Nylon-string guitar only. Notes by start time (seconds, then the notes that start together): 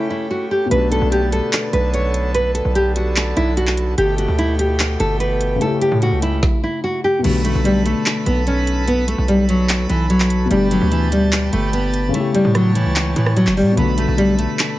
0.10 E4
0.31 F#4
0.51 G4
0.71 B4
0.92 A4
1.12 G4
1.33 A4
1.73 B4
1.94 C#5
2.35 B4
2.55 A4
2.75 G4
2.97 F#4
3.37 E4
3.57 F#4
3.98 G4
4.19 F#4
4.39 E4
4.59 G4
5.00 A4
5.20 B4
5.62 A4
5.81 G4
6.02 F#4
6.23 E4
6.64 E4
6.84 F#4
7.04 G4
7.24 B3
7.45 A3
7.65 G3
7.86 A3
8.26 B3
8.47 C#4
8.88 B3
9.08 A3
9.28 G3
9.50 F#3
9.90 E3
10.10 F#3
10.51 G3
10.72 F#3
10.92 E3
11.12 G3
11.53 A3
11.73 B3
12.15 A3
12.35 G3
12.55 F#3
12.75 E3
13.16 E3
13.37 F#3
13.57 G3
13.77 B3
13.98 A3
14.18 G3
14.39 A3